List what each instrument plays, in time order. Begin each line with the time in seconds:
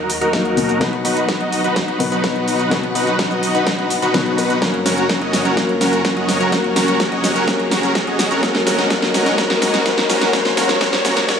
Already playing: string section D#2 D#3 A#3 F#4 A#4, grand piano F#3 A#3 D#4 A#4, supersaw synth D#4 F#4 A#4, riser
0.10 open hi-hat, shaker
0.21 supersaw synth D#4 F#4 A#4, closed hi-hat, shaker
0.33 grand piano F#3 A#3 D#4 A#4, kick, snare, closed hi-hat, shaker
0.45 closed hi-hat
0.57 grand piano B2 F#3 A#3 D#4 A#4, open hi-hat, shaker
0.69 closed hi-hat, shaker
0.80 grand piano B2 F#3 B3 D#4 B4, string section B2 F#3 D#4 B4 F#5, supersaw synth D#4 F#4 B4, kick, snare, closed hi-hat, shaker
0.93 closed hi-hat
1.05 supersaw synth D#4 F#4 B4, open hi-hat, shaker
1.17 closed hi-hat, shaker
1.28 supersaw synth D#4 F#4 B4, kick, snare, closed hi-hat, shaker
1.40 supersaw synth D#4 F#4 D#5, closed hi-hat
1.52 open hi-hat, shaker
1.64 supersaw synth D#4 F#4 B4, closed hi-hat, shaker
1.76 kick, snare, closed hi-hat, shaker
1.88 supersaw synth D#4 F#4 B4, closed hi-hat
1.99 grand piano B2 F#3 B3 D#4 B4, open hi-hat, shaker
2.12 supersaw synth D#4 F#4 B4, closed hi-hat, shaker
2.24 kick, snare, closed hi-hat, shaker
2.36 closed hi-hat
2.48 open hi-hat, shaker
2.60 closed hi-hat, shaker
2.70 grand piano B2 F#3 B3 D#4 B4, supersaw synth D#4 F#4 B4, kick, snare, closed hi-hat, shaker
2.83 closed hi-hat
2.95 supersaw synth D#4 F#4 B4, open hi-hat, shaker
3.07 closed hi-hat, shaker
3.19 supersaw synth D#4 F#4 B4, kick, snare, closed hi-hat, shaker
3.31 supersaw synth D#4 F#4 D#5, closed hi-hat, shaker
3.43 open hi-hat, shaker
3.55 supersaw synth D#4 F#4 B4, closed hi-hat, shaker
3.67 kick, snare, closed hi-hat, shaker
3.78 supersaw synth D#4 F#4 B4, closed hi-hat
3.90 open hi-hat, shaker
4.02 supersaw synth D#4 F#4 B4, closed hi-hat, shaker
4.14 grand piano B2 F#3 B3 D#4 B4, kick, snare, closed hi-hat, shaker
4.26 closed hi-hat
4.37 grand piano F#3 B3 D#4 B4, open hi-hat, shaker
4.50 closed hi-hat, shaker
4.61 string section F#2 F#3 C#4 A#4 C#5, grand piano F#3 A#3 C#4 A#4, supersaw synth C#4 F#4 A#4, kick, snare, closed hi-hat, shaker
4.74 closed hi-hat
4.86 supersaw synth C#4 F#4 A#4, snare, open hi-hat, shaker
4.98 closed hi-hat, shaker
5.09 supersaw synth C#4 F#4 A#4, kick, snare, closed hi-hat, shaker
5.21 supersaw synth C#4 F#4 D#5, closed hi-hat
5.33 snare, open hi-hat, shaker
5.45 supersaw synth C#4 F#4 A#4, closed hi-hat, shaker
5.56 grand piano F#3 A#3 C#4 A#4, supersaw synth C#4 F#4 A#4, kick, snare, closed hi-hat, shaker
5.69 closed hi-hat
5.81 supersaw synth C#4 F#4 A#4, snare, open hi-hat, shaker
5.93 closed hi-hat, shaker
6.05 supersaw synth C#4 F#4 A#4, kick, snare, closed hi-hat, shaker
6.17 supersaw synth C#4 F#4 D#5, closed hi-hat
6.29 snare, open hi-hat, shaker
6.40 supersaw synth C#4 F#4 A#4, closed hi-hat, shaker
6.51 grand piano F#3 A#3 C#4 A#4, supersaw synth C#4 F#4 A#4, kick, snare, closed hi-hat, shaker
6.64 closed hi-hat
6.76 supersaw synth C#4 F#4 A#4, snare, open hi-hat, shaker
6.88 closed hi-hat, shaker
7.00 supersaw synth C#4 F#4 A#4, kick, snare, closed hi-hat, shaker
7.12 supersaw synth C#4 F#4 D#5, closed hi-hat
7.24 snare, open hi-hat, shaker
7.36 supersaw synth C#4 F#4 A#4, closed hi-hat, shaker
7.46 grand piano F#3 A#3 C#4 A#4, supersaw synth C#4 F#4 A#4, kick, snare, closed hi-hat, shaker
7.60 closed hi-hat
7.71 supersaw synth C#4 F#4 A#4, snare, open hi-hat, shaker
7.83 closed hi-hat, shaker
7.95 supersaw synth C#4 F#4 A#4, kick, snare, closed hi-hat, shaker
8.07 supersaw synth C#4 F#4 D#5, closed hi-hat
8.19 snare, open hi-hat, shaker
8.31 supersaw synth C#4 F#4 A#4, closed hi-hat, shaker
8.42 string section G#2 G#3 D#4 D#5, grand piano F#3 A#3 C#4 A#4, supersaw synth C#4 F#4 A#4, kick, snare, closed hi-hat, shaker
8.55 snare, closed hi-hat
8.67 supersaw synth C#4 F#4 A#4, snare, open hi-hat, shaker
8.79 snare, closed hi-hat, shaker
8.89 grand piano F#3 A#3 C#4 A#4, supersaw synth C#4 F#4 A#4, kick, snare, closed hi-hat, shaker
9.02 snare, closed hi-hat
9.14 supersaw synth C#4 F#4 A#4, snare, open hi-hat, shaker
9.26 snare, closed hi-hat, shaker
9.37 grand piano F#3 A#3 C#4 A#4, supersaw synth C#4 F#4 A#4, kick, snare, closed hi-hat, shaker
9.50 snare, closed hi-hat
9.62 supersaw synth C#4 F#4 A#4, snare, open hi-hat, shaker
9.74 snare, closed hi-hat, shaker
9.84 grand piano F#3 A#3 C#4 A#4, supersaw synth C#4 F#4 A#4, kick, snare, closed hi-hat, shaker
9.98 snare, closed hi-hat
10.09 supersaw synth C#4 F#4 A#4, snare, open hi-hat, shaker
10.21 snare, closed hi-hat, shaker
10.32 grand piano F#3 A#3 C#4 A#4, supersaw synth C#4 F#4 A#4, string section C#5, kick, snare, closed hi-hat, shaker
10.45 snare, closed hi-hat, shaker
10.56 grand piano F#3 A#3 C#4 A#4, supersaw synth C#4 F#4 A#4, snare, open hi-hat, shaker
10.69 snare, closed hi-hat, shaker
10.80 grand piano F#3 A#3 C#4 A#4, supersaw synth C#4 F#4 A#4, kick, snare, closed hi-hat, shaker
10.93 snare, closed hi-hat, shaker
11.04 grand piano F#3 A#3 C#4 A#4, supersaw synth C#4 F#4 A#4, snare, open hi-hat, shaker
11.17 snare, closed hi-hat, shaker
11.27 grand piano F#3 A#3 C#4 A#4, supersaw synth C#4 F#4 A#4, kick, snare, closed hi-hat, reverse cymbal, shaker